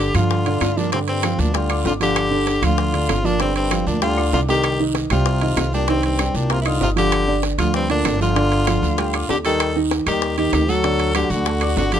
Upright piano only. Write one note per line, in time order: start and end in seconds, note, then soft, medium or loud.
0.15 0.41 F3 medium
0.15 0.41 F4 medium
0.15 0.41 F5 medium
0.47 0.72 D3 medium
0.47 0.72 D4 medium
0.47 0.72 D5 medium
0.77 0.90 F3 medium
0.77 0.90 F4 medium
0.77 0.90 F5 medium
0.93 1.18 D3 medium
0.93 1.18 D4 medium
0.93 1.18 D5 medium
1.24 1.49 F3 medium
1.24 1.49 F4 medium
1.24 1.49 F5 medium
1.55 1.67 G3 medium
1.55 1.67 G4 medium
1.55 1.68 G5 medium
1.70 1.95 D4 medium
1.70 1.95 D5 medium
1.70 1.96 D6 medium
2.00 2.26 F3 medium
2.00 2.26 F4 medium
2.00 2.26 F5 medium
2.31 2.57 D3 medium
2.31 2.57 D4 medium
2.31 2.57 D5 medium
2.62 2.88 F3 medium
2.62 2.88 F4 medium
2.62 2.88 F5 medium
2.93 3.19 D3 medium
2.93 3.19 D4 medium
2.93 3.19 D5 medium
3.24 3.37 F3 medium
3.24 3.37 F4 medium
3.24 3.37 F5 medium
3.40 3.65 D3 medium
3.40 3.66 D4 medium
3.40 3.66 D5 medium
3.71 3.97 F3 medium
3.71 3.97 F4 medium
3.71 3.97 F5 medium
4.02 4.15 G3 medium
4.02 4.15 G4 medium
4.02 4.15 G5 medium
4.17 4.43 D4 medium
4.17 4.43 D5 medium
4.17 4.43 D6 medium
4.49 4.74 G3 medium
4.49 4.74 G4 medium
4.49 4.74 G5 medium
4.80 5.05 D#3 medium
4.80 5.05 D#4 medium
4.80 5.06 D#5 medium
5.11 5.36 G3 medium
5.11 5.37 G4 medium
5.11 5.37 G5 medium
5.42 5.67 D#3 medium
5.42 5.67 D#4 medium
5.42 5.68 D#5 medium
5.73 5.86 G3 medium
5.73 5.86 G4 medium
5.73 5.86 G5 medium
5.89 6.14 D#3 medium
5.89 6.14 D#4 medium
5.89 6.14 D#5 medium
6.20 6.45 G3 medium
6.20 6.45 G4 medium
6.20 6.45 G5 medium
6.50 6.63 A#3 medium
6.50 6.63 A#4 medium
6.50 6.63 A#5 medium
6.66 6.91 D#4 medium
6.66 6.91 D#5 medium
6.66 6.91 D#6 medium
6.96 7.22 F3 medium
6.96 7.22 F4 medium
6.96 7.22 F5 medium
7.28 7.53 D3 medium
7.28 7.53 D4 medium
7.28 7.54 D5 medium
7.58 7.84 F3 medium
7.58 7.84 F4 medium
7.58 7.84 F5 medium
7.90 8.15 D3 medium
7.90 8.15 D4 medium
7.90 8.15 D5 medium
8.21 8.33 F3 medium
8.21 8.33 F4 medium
8.21 8.34 F5 medium
8.36 8.61 D3 medium
8.36 8.62 D4 medium
8.36 8.62 D5 medium
8.68 8.93 F3 medium
8.68 8.93 F4 medium
8.68 8.93 F5 medium
8.98 9.11 G3 medium
8.98 9.11 G4 medium
8.98 9.11 G5 medium
9.14 9.39 D4 medium
9.14 9.40 D5 medium
9.14 9.40 D6 medium
9.45 9.71 G3 medium
9.45 9.71 G4 medium
9.45 9.71 G5 medium
9.76 10.01 D#3 medium
9.76 10.02 D#4 medium
9.76 10.02 D#5 medium
10.07 10.32 G3 medium
10.07 10.33 G4 medium
10.07 10.33 G5 medium
10.38 10.63 D#3 medium
10.38 10.63 D#4 medium
10.38 10.64 D#5 medium
10.69 10.81 F#3 medium
10.69 10.81 F#4 medium
10.69 10.82 F#5 medium
10.84 11.09 D3 medium
10.84 11.10 D4 medium
10.84 11.10 D5 medium
11.15 11.41 F#3 medium
11.15 11.41 F#4 medium
11.15 11.41 F#5 medium
11.46 11.59 A3 medium
11.46 11.59 A4 medium
11.46 11.59 A5 medium
11.62 11.87 D4 medium
11.62 11.87 D5 medium
11.62 11.88 D6 medium
11.93 12.00 F3 medium
11.93 12.00 F4 medium
11.93 12.00 F5 medium